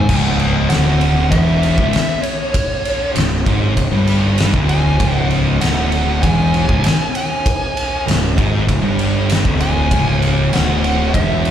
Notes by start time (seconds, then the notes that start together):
Already playing: G#5
0.09 C#1 C#2, kick, crash
0.22 F#5
0.40 ride
0.69 D1 D2 F#5, snare, ride
1.01 ride
1.30 E1 E2 E5, kick, ride
1.63 ride
1.78 C#1 C#2, kick
1.93 snare, ride
2.22 C#5, ride
2.54 kick, ride
2.85 ride
3.14 C#1 C#2, ride
3.18 snare
3.45 G#1 G#2, kick, ride
3.76 C#1 C#2, kick, ride
3.91 G1 G2
4.07 ride
4.38 snare, ride
4.54 D1 D2, kick
4.69 G#5, ride
4.99 C#1 C#2, kick, ride
5.13 F#5
5.31 ride
5.60 D1 D2 F#5, snare, ride
5.92 ride
6.22 E1 E2 G#5, kick, ride
6.54 ride
6.68 C#1 C#2, kick
6.84 snare, ride
7.15 G#5, ride
7.46 kick, ride
7.77 ride
8.07 C#1 C#2, ride
8.11 snare
8.37 G#1 G#2, kick, ride
8.67 C#1 C#2, kick, ride
8.82 G1 G2
8.99 ride
9.30 snare, ride
9.45 D1 D2, kick
9.60 G#5, ride
9.91 C#1 C#2, kick, ride
10.22 ride
10.52 D1 D2 F#5, snare, ride
10.84 ride
11.14 E1 E2 E5, kick, ride
11.45 ride